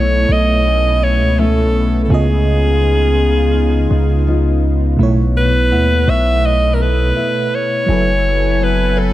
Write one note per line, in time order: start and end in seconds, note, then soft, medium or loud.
0.00 0.25 B1 loud
0.00 2.05 B2 medium
0.00 2.10 B2 medium
0.00 1.37 A3 medium
0.00 2.06 A3 medium
0.00 2.07 A3 medium
0.00 4.96 B3 medium
0.00 1.39 E4 medium
0.00 2.07 E4 medium
0.00 2.00 A4 medium
0.00 0.33 C#5 loud
0.00 2.08 C#5 medium
0.29 1.21 B1 loud
0.29 1.05 D#5 loud
0.66 1.38 C#4 medium
1.03 1.41 C#5 loud
1.20 1.66 C#2 loud
1.38 2.18 A3 medium
1.38 2.85 C#4 medium
1.38 2.18 E4 medium
1.38 2.04 A4 medium
1.65 2.08 B1 medium
2.04 4.94 C#3 medium
2.04 2.13 A4 medium
2.09 3.87 C#2 loud
2.09 4.99 C#3 medium
2.09 4.97 C#3 medium
2.09 4.95 B3 medium
2.09 4.97 D#4 medium
2.09 4.96 F4 medium
2.09 4.64 G#4 medium
2.14 4.97 D#5 medium
2.82 4.27 B3 medium
3.54 4.26 D#4 medium
3.91 4.95 C#2 medium
4.27 4.99 B3 medium
4.27 5.07 D#4 medium
4.27 5.07 F4 medium
4.96 5.73 B1 loud
4.96 7.83 B2 medium
4.96 7.84 A3 medium
4.96 7.86 A3 medium
4.96 7.86 B3 medium
4.96 8.49 B3 medium
4.96 9.13 E4 medium
5.01 7.85 E4 medium
5.01 7.86 C#5 medium
5.37 6.11 B4 loud
5.71 6.06 D#2 loud
5.71 7.16 E4 medium
5.71 6.46 F#5 soft
6.08 7.12 B1 loud
6.08 8.64 C#5 medium
6.08 6.48 E5 loud
6.46 6.76 D#5 loud
6.74 6.84 A#4 medium
6.80 8.64 A4 medium
6.80 7.56 B4 loud
7.16 9.13 E4 medium
7.55 8.65 C#5 loud
7.86 9.13 F#1 loud
7.86 9.13 F#3 medium
7.86 9.13 E4 medium
7.86 9.13 A4 medium
7.86 9.13 B4 medium
7.86 9.13 G#5 medium
7.91 9.13 A4 medium
7.91 9.13 B4 medium
8.61 9.13 B3 medium
8.61 9.00 B4 medium
8.97 9.13 A4 medium
8.97 9.13 C#5 soft